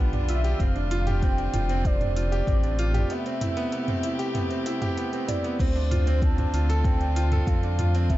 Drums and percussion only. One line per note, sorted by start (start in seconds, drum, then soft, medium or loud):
0.13 closed hi-hat soft
0.13 mid tom medium
0.29 closed hi-hat medium
0.44 closed hi-hat soft
0.60 kick loud
0.60 closed hi-hat soft
0.60 mid tom medium
0.76 closed hi-hat soft
0.91 closed hi-hat medium
1.07 closed hi-hat soft
1.07 mid tom medium
1.22 kick loud
1.22 closed hi-hat soft
1.38 closed hi-hat soft
1.54 closed hi-hat medium
1.54 mid tom medium
1.69 closed hi-hat soft
1.85 kick loud
1.85 closed hi-hat soft
2.01 closed hi-hat soft
2.01 mid tom medium
2.17 closed hi-hat medium
2.32 closed hi-hat soft
2.47 kick loud
2.47 closed hi-hat soft
2.47 mid tom medium
2.63 closed hi-hat soft
2.79 closed hi-hat medium
2.94 closed hi-hat soft
2.94 mid tom medium
3.10 closed hi-hat soft
3.26 closed hi-hat soft
3.41 closed hi-hat medium
3.41 mid tom medium
3.57 closed hi-hat soft
3.72 closed hi-hat soft
3.88 closed hi-hat soft
3.88 mid tom medium
4.03 closed hi-hat medium
4.19 closed hi-hat soft
4.35 closed hi-hat soft
4.35 mid tom medium
4.50 closed hi-hat soft
4.66 closed hi-hat medium
4.82 closed hi-hat soft
4.82 mid tom medium
4.97 closed hi-hat soft
5.13 closed hi-hat soft
5.29 closed hi-hat medium
5.29 mid tom medium
5.44 closed hi-hat soft
5.59 kick loud
5.59 closed hi-hat soft
5.59 crash medium
5.76 closed hi-hat soft
5.92 closed hi-hat medium
5.92 mid tom medium
6.07 closed hi-hat soft
6.22 kick loud
6.22 closed hi-hat soft
6.38 closed hi-hat soft
6.38 mid tom medium
6.54 closed hi-hat medium
6.70 closed hi-hat soft
6.84 kick loud
6.84 closed hi-hat soft
6.84 mid tom medium
7.01 closed hi-hat soft
7.16 closed hi-hat medium
7.32 closed hi-hat soft
7.32 mid tom medium
7.47 kick loud
7.47 closed hi-hat soft
7.63 closed hi-hat soft
7.79 closed hi-hat medium
7.79 mid tom medium
7.95 closed hi-hat soft
8.10 kick loud
8.10 closed hi-hat soft